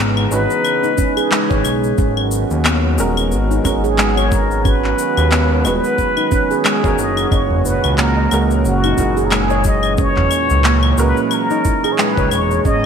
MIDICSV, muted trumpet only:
0, 0, Header, 1, 2, 480
1, 0, Start_track
1, 0, Tempo, 666667
1, 1428, Time_signature, 4, 2, 24, 8
1, 9257, End_track
2, 0, Start_track
2, 0, Title_t, "Muted trumpet"
2, 0, Program_c, 0, 59
2, 221, Note_on_c, 0, 71, 94
2, 1156, Note_off_c, 0, 71, 0
2, 2873, Note_on_c, 0, 68, 87
2, 3115, Note_on_c, 0, 70, 82
2, 3125, Note_off_c, 0, 68, 0
2, 3359, Note_on_c, 0, 71, 95
2, 3370, Note_off_c, 0, 70, 0
2, 4073, Note_off_c, 0, 71, 0
2, 4079, Note_on_c, 0, 71, 109
2, 4802, Note_on_c, 0, 68, 91
2, 4813, Note_off_c, 0, 71, 0
2, 5041, Note_on_c, 0, 75, 92
2, 5052, Note_off_c, 0, 68, 0
2, 5277, Note_on_c, 0, 73, 90
2, 5288, Note_off_c, 0, 75, 0
2, 5513, Note_on_c, 0, 71, 85
2, 5524, Note_off_c, 0, 73, 0
2, 5750, Note_off_c, 0, 71, 0
2, 5757, Note_on_c, 0, 70, 95
2, 6024, Note_off_c, 0, 70, 0
2, 6243, Note_on_c, 0, 66, 92
2, 6664, Note_on_c, 0, 70, 66
2, 6675, Note_off_c, 0, 66, 0
2, 6730, Note_on_c, 0, 68, 91
2, 6741, Note_off_c, 0, 70, 0
2, 6959, Note_on_c, 0, 75, 99
2, 6970, Note_off_c, 0, 68, 0
2, 7196, Note_on_c, 0, 73, 105
2, 7207, Note_off_c, 0, 75, 0
2, 7853, Note_off_c, 0, 73, 0
2, 7857, Note_on_c, 0, 73, 77
2, 7915, Note_on_c, 0, 71, 98
2, 7926, Note_off_c, 0, 73, 0
2, 8098, Note_off_c, 0, 71, 0
2, 8098, Note_on_c, 0, 71, 75
2, 8157, Note_on_c, 0, 70, 103
2, 8168, Note_off_c, 0, 71, 0
2, 8584, Note_on_c, 0, 73, 72
2, 8595, Note_off_c, 0, 70, 0
2, 8640, Note_on_c, 0, 71, 102
2, 8651, Note_off_c, 0, 73, 0
2, 8882, Note_on_c, 0, 73, 104
2, 8893, Note_off_c, 0, 71, 0
2, 9110, Note_off_c, 0, 73, 0
2, 9115, Note_on_c, 0, 75, 110
2, 9257, Note_off_c, 0, 75, 0
2, 9257, End_track
0, 0, End_of_file